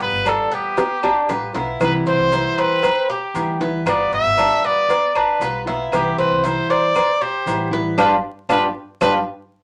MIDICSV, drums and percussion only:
0, 0, Header, 1, 2, 480
1, 0, Start_track
1, 0, Key_signature, 0, "major"
1, 0, Tempo, 515464
1, 1680, Time_signature, 4, 2, 24, 8
1, 8970, End_track
2, 0, Start_track
2, 0, Title_t, "Drums"
2, 0, Note_on_c, 9, 70, 30
2, 3, Note_on_c, 9, 56, 74
2, 88, Note_off_c, 9, 70, 0
2, 96, Note_off_c, 9, 56, 0
2, 237, Note_on_c, 9, 68, 103
2, 238, Note_on_c, 9, 75, 65
2, 239, Note_on_c, 9, 70, 65
2, 247, Note_on_c, 9, 56, 75
2, 331, Note_off_c, 9, 68, 0
2, 332, Note_off_c, 9, 70, 0
2, 332, Note_off_c, 9, 75, 0
2, 340, Note_off_c, 9, 56, 0
2, 479, Note_on_c, 9, 70, 29
2, 572, Note_off_c, 9, 70, 0
2, 718, Note_on_c, 9, 68, 97
2, 721, Note_on_c, 9, 70, 75
2, 724, Note_on_c, 9, 56, 102
2, 724, Note_on_c, 9, 60, 104
2, 811, Note_off_c, 9, 68, 0
2, 814, Note_off_c, 9, 70, 0
2, 817, Note_off_c, 9, 56, 0
2, 817, Note_off_c, 9, 60, 0
2, 959, Note_on_c, 9, 75, 71
2, 961, Note_on_c, 9, 68, 119
2, 963, Note_on_c, 9, 70, 33
2, 967, Note_on_c, 9, 60, 87
2, 1052, Note_off_c, 9, 75, 0
2, 1054, Note_off_c, 9, 68, 0
2, 1056, Note_off_c, 9, 70, 0
2, 1060, Note_off_c, 9, 60, 0
2, 1200, Note_on_c, 9, 68, 92
2, 1202, Note_on_c, 9, 70, 80
2, 1207, Note_on_c, 9, 56, 70
2, 1207, Note_on_c, 9, 61, 82
2, 1293, Note_off_c, 9, 68, 0
2, 1295, Note_off_c, 9, 70, 0
2, 1300, Note_off_c, 9, 56, 0
2, 1300, Note_off_c, 9, 61, 0
2, 1441, Note_on_c, 9, 68, 86
2, 1443, Note_on_c, 9, 70, 31
2, 1445, Note_on_c, 9, 56, 73
2, 1445, Note_on_c, 9, 61, 69
2, 1534, Note_off_c, 9, 68, 0
2, 1536, Note_off_c, 9, 70, 0
2, 1538, Note_off_c, 9, 56, 0
2, 1538, Note_off_c, 9, 61, 0
2, 1681, Note_on_c, 9, 70, 71
2, 1682, Note_on_c, 9, 56, 105
2, 1682, Note_on_c, 9, 68, 104
2, 1683, Note_on_c, 9, 75, 73
2, 1774, Note_off_c, 9, 70, 0
2, 1775, Note_off_c, 9, 68, 0
2, 1776, Note_off_c, 9, 56, 0
2, 1776, Note_off_c, 9, 75, 0
2, 1918, Note_on_c, 9, 70, 31
2, 2011, Note_off_c, 9, 70, 0
2, 2159, Note_on_c, 9, 56, 68
2, 2160, Note_on_c, 9, 68, 84
2, 2161, Note_on_c, 9, 70, 77
2, 2252, Note_off_c, 9, 56, 0
2, 2253, Note_off_c, 9, 68, 0
2, 2254, Note_off_c, 9, 70, 0
2, 2399, Note_on_c, 9, 70, 30
2, 2400, Note_on_c, 9, 68, 86
2, 2403, Note_on_c, 9, 56, 68
2, 2492, Note_off_c, 9, 70, 0
2, 2493, Note_off_c, 9, 68, 0
2, 2496, Note_off_c, 9, 56, 0
2, 2637, Note_on_c, 9, 56, 116
2, 2637, Note_on_c, 9, 68, 117
2, 2641, Note_on_c, 9, 70, 80
2, 2642, Note_on_c, 9, 75, 72
2, 2730, Note_off_c, 9, 56, 0
2, 2731, Note_off_c, 9, 68, 0
2, 2734, Note_off_c, 9, 70, 0
2, 2736, Note_off_c, 9, 75, 0
2, 2878, Note_on_c, 9, 70, 32
2, 2971, Note_off_c, 9, 70, 0
2, 3117, Note_on_c, 9, 68, 87
2, 3121, Note_on_c, 9, 70, 81
2, 3122, Note_on_c, 9, 56, 76
2, 3210, Note_off_c, 9, 68, 0
2, 3214, Note_off_c, 9, 70, 0
2, 3215, Note_off_c, 9, 56, 0
2, 3360, Note_on_c, 9, 70, 30
2, 3362, Note_on_c, 9, 56, 67
2, 3453, Note_off_c, 9, 70, 0
2, 3455, Note_off_c, 9, 56, 0
2, 3595, Note_on_c, 9, 68, 101
2, 3597, Note_on_c, 9, 70, 73
2, 3599, Note_on_c, 9, 75, 75
2, 3602, Note_on_c, 9, 56, 113
2, 3688, Note_off_c, 9, 68, 0
2, 3690, Note_off_c, 9, 70, 0
2, 3692, Note_off_c, 9, 75, 0
2, 3695, Note_off_c, 9, 56, 0
2, 3835, Note_on_c, 9, 70, 31
2, 3843, Note_on_c, 9, 56, 68
2, 3928, Note_off_c, 9, 70, 0
2, 3937, Note_off_c, 9, 56, 0
2, 4075, Note_on_c, 9, 68, 103
2, 4077, Note_on_c, 9, 70, 73
2, 4077, Note_on_c, 9, 75, 66
2, 4081, Note_on_c, 9, 56, 72
2, 4168, Note_off_c, 9, 68, 0
2, 4170, Note_off_c, 9, 70, 0
2, 4170, Note_off_c, 9, 75, 0
2, 4175, Note_off_c, 9, 56, 0
2, 4321, Note_on_c, 9, 70, 31
2, 4414, Note_off_c, 9, 70, 0
2, 4557, Note_on_c, 9, 68, 95
2, 4560, Note_on_c, 9, 70, 75
2, 4564, Note_on_c, 9, 56, 107
2, 4650, Note_off_c, 9, 68, 0
2, 4653, Note_off_c, 9, 70, 0
2, 4658, Note_off_c, 9, 56, 0
2, 4796, Note_on_c, 9, 70, 32
2, 4798, Note_on_c, 9, 68, 115
2, 4798, Note_on_c, 9, 75, 77
2, 4889, Note_off_c, 9, 70, 0
2, 4891, Note_off_c, 9, 68, 0
2, 4891, Note_off_c, 9, 75, 0
2, 5039, Note_on_c, 9, 70, 78
2, 5040, Note_on_c, 9, 56, 72
2, 5041, Note_on_c, 9, 68, 87
2, 5133, Note_off_c, 9, 56, 0
2, 5133, Note_off_c, 9, 70, 0
2, 5134, Note_off_c, 9, 68, 0
2, 5279, Note_on_c, 9, 68, 88
2, 5282, Note_on_c, 9, 56, 79
2, 5282, Note_on_c, 9, 70, 29
2, 5372, Note_off_c, 9, 68, 0
2, 5375, Note_off_c, 9, 56, 0
2, 5375, Note_off_c, 9, 70, 0
2, 5516, Note_on_c, 9, 68, 107
2, 5516, Note_on_c, 9, 75, 72
2, 5524, Note_on_c, 9, 56, 109
2, 5524, Note_on_c, 9, 70, 73
2, 5609, Note_off_c, 9, 68, 0
2, 5609, Note_off_c, 9, 75, 0
2, 5617, Note_off_c, 9, 56, 0
2, 5617, Note_off_c, 9, 70, 0
2, 5765, Note_on_c, 9, 70, 30
2, 5858, Note_off_c, 9, 70, 0
2, 6000, Note_on_c, 9, 68, 82
2, 6002, Note_on_c, 9, 70, 69
2, 6003, Note_on_c, 9, 56, 65
2, 6094, Note_off_c, 9, 68, 0
2, 6095, Note_off_c, 9, 70, 0
2, 6096, Note_off_c, 9, 56, 0
2, 6239, Note_on_c, 9, 68, 91
2, 6240, Note_on_c, 9, 56, 74
2, 6240, Note_on_c, 9, 70, 31
2, 6332, Note_off_c, 9, 68, 0
2, 6333, Note_off_c, 9, 56, 0
2, 6333, Note_off_c, 9, 70, 0
2, 6473, Note_on_c, 9, 70, 73
2, 6477, Note_on_c, 9, 68, 113
2, 6477, Note_on_c, 9, 75, 71
2, 6483, Note_on_c, 9, 56, 109
2, 6567, Note_off_c, 9, 70, 0
2, 6570, Note_off_c, 9, 68, 0
2, 6570, Note_off_c, 9, 75, 0
2, 6576, Note_off_c, 9, 56, 0
2, 6715, Note_on_c, 9, 70, 30
2, 6808, Note_off_c, 9, 70, 0
2, 6957, Note_on_c, 9, 66, 69
2, 6957, Note_on_c, 9, 68, 90
2, 6958, Note_on_c, 9, 70, 78
2, 6959, Note_on_c, 9, 56, 77
2, 7051, Note_off_c, 9, 66, 0
2, 7051, Note_off_c, 9, 68, 0
2, 7051, Note_off_c, 9, 70, 0
2, 7052, Note_off_c, 9, 56, 0
2, 7199, Note_on_c, 9, 56, 66
2, 7199, Note_on_c, 9, 70, 27
2, 7292, Note_off_c, 9, 56, 0
2, 7292, Note_off_c, 9, 70, 0
2, 7434, Note_on_c, 9, 65, 99
2, 7434, Note_on_c, 9, 70, 102
2, 7436, Note_on_c, 9, 75, 112
2, 7439, Note_on_c, 9, 56, 110
2, 7527, Note_off_c, 9, 65, 0
2, 7527, Note_off_c, 9, 70, 0
2, 7529, Note_off_c, 9, 75, 0
2, 7532, Note_off_c, 9, 56, 0
2, 7911, Note_on_c, 9, 56, 102
2, 7912, Note_on_c, 9, 75, 98
2, 7915, Note_on_c, 9, 65, 101
2, 7915, Note_on_c, 9, 70, 102
2, 8004, Note_off_c, 9, 56, 0
2, 8005, Note_off_c, 9, 75, 0
2, 8008, Note_off_c, 9, 65, 0
2, 8008, Note_off_c, 9, 70, 0
2, 8392, Note_on_c, 9, 75, 109
2, 8393, Note_on_c, 9, 70, 99
2, 8394, Note_on_c, 9, 65, 109
2, 8396, Note_on_c, 9, 56, 111
2, 8485, Note_off_c, 9, 75, 0
2, 8486, Note_off_c, 9, 70, 0
2, 8487, Note_off_c, 9, 65, 0
2, 8489, Note_off_c, 9, 56, 0
2, 8970, End_track
0, 0, End_of_file